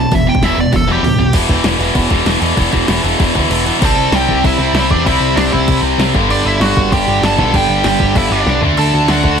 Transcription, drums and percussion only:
0.12 kick loud
0.12 open hi-hat medium
0.35 kick medium
0.43 snare loud
0.43 open hi-hat medium
0.73 kick loud
0.73 snare medium
0.73 open hi-hat medium
0.88 high tom medium
1.04 mid tom loud
1.04 open hi-hat medium
1.19 floor tom medium
1.33 kick loud
1.33 crash loud
1.33 crash medium
1.49 kick medium
1.49 crash medium
1.64 snare loud
1.64 crash medium
1.81 crash medium
1.95 kick loud
1.95 crash medium
2.10 kick medium
2.10 crash medium
2.26 snare loud
2.26 crash medium
2.42 crash medium
2.57 kick loud
2.57 crash medium
2.73 kick medium
2.73 crash medium
2.88 snare loud
2.88 crash loud
3.05 crash medium
3.20 kick loud
3.20 crash medium
3.35 kick medium
3.35 crash medium
3.51 crash medium
3.67 crash medium
3.82 kick loud
3.82 crash loud
3.82 crash medium
4.12 snare loud
4.12 crash medium
4.29 kick medium
4.44 kick loud
4.44 crash medium
4.75 snare loud
4.75 crash medium
4.91 kick medium
5.06 kick loud
5.06 crash medium
5.37 snare loud
5.37 crash medium
5.53 kick medium
5.68 kick loud
5.68 crash medium
6.00 snare loud
6.00 crash medium
6.15 kick medium
6.30 crash medium
6.61 snare loud
6.61 crash medium
6.77 kick medium
6.92 kick loud
6.92 crash medium
7.23 snare loud
7.23 crash medium
7.38 kick medium
7.54 kick loud
7.54 crash medium
7.84 snare loud
7.84 crash medium
8.00 kick medium
8.15 kick loud
8.15 crash medium
8.47 snare medium
8.62 floor tom medium
8.77 crash medium
9.08 snare loud
9.08 crash medium
9.24 kick medium

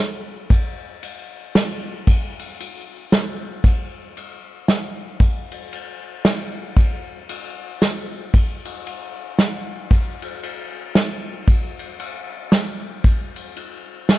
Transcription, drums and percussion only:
0.50 kick loud
0.50 ride medium
1.03 ride medium
1.55 snare medium
1.55 ride medium
2.07 kick loud
2.07 ride medium
2.39 ride medium
2.60 ride medium
3.12 snare medium
3.12 ride medium
3.64 kick loud
3.64 ride medium
4.17 ride medium
4.68 snare medium
4.68 ride medium
5.20 kick loud
5.20 ride medium
5.52 ride medium
5.73 ride medium
6.25 snare medium
6.25 ride medium
6.76 kick loud
6.76 ride medium
7.29 ride medium
7.82 snare medium
7.82 ride medium
8.34 kick loud
8.34 ride medium
8.65 ride medium
8.87 ride medium
9.39 snare medium
9.39 ride medium
9.91 kick loud
9.91 ride medium
10.22 ride medium
10.43 ride medium
10.95 snare medium
10.95 ride medium
11.48 kick loud
11.48 ride medium
11.79 ride medium
12.00 ride medium
12.52 snare medium
12.52 ride medium
13.04 kick loud
13.04 ride medium
13.36 ride medium
13.56 ride medium
14.09 snare medium
14.09 ride medium

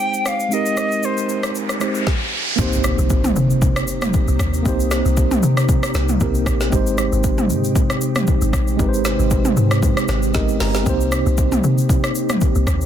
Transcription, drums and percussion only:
0.14 shaker soft
0.26 cross-stick loud
0.26 shaker medium
0.40 shaker soft
0.52 shaker medium
0.66 shaker medium
0.77 cross-stick medium
0.77 shaker medium
0.92 shaker soft
1.03 shaker medium
1.17 shaker medium
1.29 shaker medium
1.43 cross-stick medium
1.43 shaker medium
1.55 shaker medium
1.69 cross-stick medium
1.69 shaker medium
1.81 cross-stick medium
1.81 shaker medium
1.95 shaker medium
2.07 kick loud
2.07 snare medium
2.59 kick loud
2.59 shaker medium
2.73 shaker medium
2.84 cross-stick loud
2.84 shaker loud
2.99 shaker medium
3.10 kick loud
3.10 shaker medium
3.24 mid tom loud
3.24 shaker medium
3.36 shaker medium
3.50 shaker medium
3.62 kick loud
3.62 shaker medium
3.76 cross-stick loud
3.76 shaker medium
3.88 shaker medium
4.02 cross-stick loud
4.02 mid tom medium
4.02 shaker medium
4.13 kick loud
4.13 shaker medium
4.28 shaker soft
4.39 kick loud
4.39 cross-stick loud
4.39 shaker medium
4.54 shaker medium
4.66 kick loud
4.66 shaker medium
4.80 shaker medium
4.91 cross-stick loud
4.91 snare medium
4.91 shaker loud
5.06 shaker medium
5.17 kick loud
5.17 shaker medium
5.31 mid tom loud
5.31 shaker medium
5.43 shaker medium
5.57 cross-stick loud
5.57 shaker medium
5.69 kick loud
5.69 shaker medium
5.83 cross-stick loud
5.83 shaker medium
5.94 cross-stick medium
5.94 snare medium
5.94 shaker medium
6.09 mid tom medium
6.09 shaker medium
6.20 kick loud
6.20 shaker medium
6.35 shaker soft
6.46 kick loud
6.46 cross-stick loud
6.46 shaker loud
6.61 snare medium
6.61 shaker medium
6.72 kick loud
6.72 shaker medium
6.87 shaker medium
6.98 cross-stick medium
6.98 shaker loud
7.13 shaker medium
7.24 kick loud
7.24 shaker medium
7.38 mid tom medium
7.38 shaker medium
7.50 shaker medium
7.64 shaker medium
7.76 kick loud
7.76 shaker medium
7.90 cross-stick loud
7.90 shaker medium
8.01 shaker medium
8.15 cross-stick loud
8.15 mid tom medium
8.15 shaker medium
8.27 kick loud
8.27 shaker medium
8.41 shaker medium
8.53 kick loud
8.53 cross-stick loud
8.53 shaker medium
8.67 shaker soft
8.79 kick loud
8.79 shaker medium
8.94 shaker medium
9.05 cross-stick loud
9.05 snare medium
9.05 shaker loud
9.19 shaker soft
9.31 kick loud
9.31 shaker medium
9.45 mid tom loud
9.45 shaker medium
9.57 shaker medium
9.71 cross-stick loud
9.71 shaker medium
9.83 kick loud
9.83 shaker medium
9.97 cross-stick medium
9.97 shaker medium
10.08 cross-stick medium
10.08 snare medium
10.08 shaker medium
10.23 shaker medium
10.34 kick loud
10.34 snare medium
10.34 shaker medium
10.49 shaker soft
10.60 snare loud
10.60 open hi-hat medium
10.60 shaker medium
10.74 snare loud
10.74 shaker soft
10.86 kick loud
10.86 shaker medium
11.01 shaker medium
11.12 cross-stick loud
11.12 shaker loud
11.26 shaker medium
11.38 kick loud
11.38 shaker medium
11.52 mid tom medium
11.52 shaker medium
11.64 shaker medium
11.78 shaker medium
11.89 kick loud
11.89 shaker medium
12.04 cross-stick loud
12.04 shaker medium
12.15 shaker medium
12.29 cross-stick loud
12.29 mid tom medium
12.29 shaker medium
12.41 kick loud
12.41 shaker medium
12.55 shaker soft
12.67 kick loud
12.67 cross-stick loud
12.67 shaker medium
12.81 shaker medium

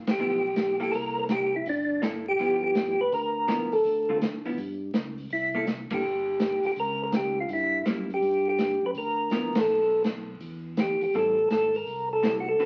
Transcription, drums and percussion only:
0.07 snare medium
0.07 ride medium
0.56 snare medium
0.56 closed hi-hat soft
0.80 open hi-hat soft
0.93 open hi-hat soft
1.29 snare medium
1.29 closed hi-hat soft
1.66 open hi-hat soft
2.02 snare medium
2.02 closed hi-hat soft
2.39 open hi-hat soft
2.75 snare medium
2.75 closed hi-hat soft
3.12 open hi-hat soft
3.48 snare medium
3.48 closed hi-hat soft
3.72 open hi-hat soft
3.84 open hi-hat soft
4.21 snare medium
4.21 closed hi-hat medium
4.45 open hi-hat soft
4.58 open hi-hat soft
4.94 snare medium
4.94 closed hi-hat soft
5.18 open hi-hat soft
5.30 open hi-hat soft
5.67 snare medium
5.67 closed hi-hat soft
5.90 kick medium
5.90 ride medium
6.40 snare medium
6.40 closed hi-hat medium
6.63 open hi-hat soft
6.76 open hi-hat soft
7.12 snare medium
7.12 closed hi-hat soft
7.49 open hi-hat soft
7.85 snare medium
7.85 closed hi-hat soft
8.10 open hi-hat soft
8.22 open hi-hat soft
8.58 snare medium
8.58 closed hi-hat soft
8.95 open hi-hat soft
9.31 snare medium
9.31 closed hi-hat soft
9.55 snare medium
9.55 ride medium
10.04 snare medium
10.04 closed hi-hat medium
10.40 open hi-hat soft
10.77 snare medium
10.77 closed hi-hat soft
11.01 open hi-hat soft
11.14 open hi-hat soft
11.50 snare medium
11.50 closed hi-hat soft
11.74 open hi-hat soft
11.87 open hi-hat soft
12.23 snare medium
12.23 closed hi-hat soft
12.60 open hi-hat soft

